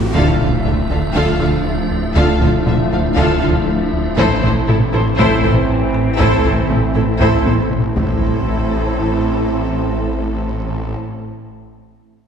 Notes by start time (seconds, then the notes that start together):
Already playing: A1 A3 C4 A4 E5, riser
0.13 D1 D2 D3 F3 A3 D4 E4 F4 A4 E5 F5, taiko, impact
0.39 D2 D3 A3 F4 A4 F5, taiko low-mid
0.65 D2 D3 D4 F4 E5, taiko low-mid
0.89 D2 D3 D4 F4 A4 F5
1.14 D2 D3 F4 A4 F5, taiko
1.39 D2 D3 D4 F4 A4 F5, taiko low-mid
1.65 D2
1.91 D2
2.15 D2 D3 F4 A4 F5, taiko
2.40 D2 D3 A3 F4 A4 F5, taiko low-mid
2.66 D2 D3 D4 F4 E5, taiko low-mid
2.90 D2 D3 D4 F4 A4 F5
3.16 D2 D3 F4 A4 F5, taiko
3.41 D2 D3 D4 F4 A4 F5, taiko low-mid
3.67 D2
3.93 D2
4.17 A1 A2 E3 A3 C4 E4 A4 C5 E5, taiko
4.42 A1 A2 A3 E4 A4 C5, taiko low-mid
4.68 A1 A2 E4 A4, taiko low-mid
4.93 A1 A2 E4 A4 C5, taiko rim
5.18 A1 A2 A3 E4 A4 C5, taiko
5.43 A1 A2 E4 A4 C5, taiko low-mid
5.69 A2
5.94 A2, taiko rim
6.18 A1 A2 A3 E4 A4 C5, taiko
6.43 A1 A2 A3 E4 A4 C5, taiko low-mid
6.69 A1 A2 E4 A4, taiko low-mid
6.94 A1 A2 E4 A4 C5, taiko rim
7.20 A1 A2 A3 E4 A4 C5, taiko
7.45 A1 A2 E4 A4 C5, taiko high
7.70 A2, taiko low-mid
7.95 A1 A2 E3 A3 C4 E4 A4 C5 E5, taiko, impact